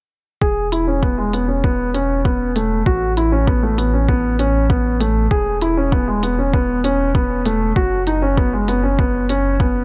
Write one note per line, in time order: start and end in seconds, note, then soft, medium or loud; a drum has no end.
0.41 2.83 E1 medium
0.41 0.66 G#4 medium
0.41 kick medium
0.72 0.85 E4 medium
0.72 closed hi-hat soft
0.87 1.00 C#4 medium
1.03 1.15 B3 medium
1.03 kick medium
1.18 1.30 G#3 medium
1.33 1.46 B3 medium
1.33 closed hi-hat medium
1.48 1.61 C#4 medium
1.64 1.89 B3 medium
1.64 kick medium
1.94 2.19 C#4 medium
1.94 closed hi-hat soft
2.25 2.50 B3 medium
2.25 kick medium
2.56 2.80 A3 medium
2.56 closed hi-hat soft
2.86 5.28 A1 medium
2.86 3.11 F#4 medium
2.86 kick medium
3.17 3.29 E4 medium
3.17 closed hi-hat medium
3.32 3.45 C#4 medium
3.47 3.60 B3 medium
3.47 kick loud
3.63 3.75 A3 medium
3.78 3.90 B3 medium
3.78 closed hi-hat medium
3.94 4.06 C#4 medium
4.09 4.33 B3 medium
4.09 kick medium
4.39 4.64 C#4 medium
4.39 closed hi-hat medium
4.70 4.95 B3 medium
4.70 kick loud
5.00 5.25 A3 medium
5.00 closed hi-hat medium
5.31 7.73 E1 medium
5.31 5.56 G#4 medium
5.31 kick loud
5.62 5.74 E4 medium
5.62 closed hi-hat medium
5.77 5.90 C#4 medium
5.92 6.05 B3 medium
5.92 kick loud
6.08 6.20 G#3 medium
6.23 6.36 B3 medium
6.23 closed hi-hat medium
6.39 6.51 C#4 medium
6.53 6.78 B3 medium
6.53 kick medium
6.84 7.09 C#4 medium
6.84 closed hi-hat medium
7.15 7.40 B3 medium
7.15 kick loud
7.46 7.70 A3 medium
7.46 closed hi-hat medium
7.76 9.84 F#1 medium
7.76 8.01 F#4 medium
7.76 kick medium
8.07 8.19 D#4 medium
8.07 closed hi-hat medium
8.22 8.35 C#4 medium
8.37 8.50 B3 medium
8.37 kick medium
8.53 8.65 G#3 medium
8.68 8.81 B3 medium
8.68 closed hi-hat soft
8.84 8.96 C#4 medium
8.99 9.24 B3 medium
8.99 kick medium
9.29 9.54 C#4 medium
9.29 closed hi-hat medium
9.60 9.84 B3 medium
9.60 kick loud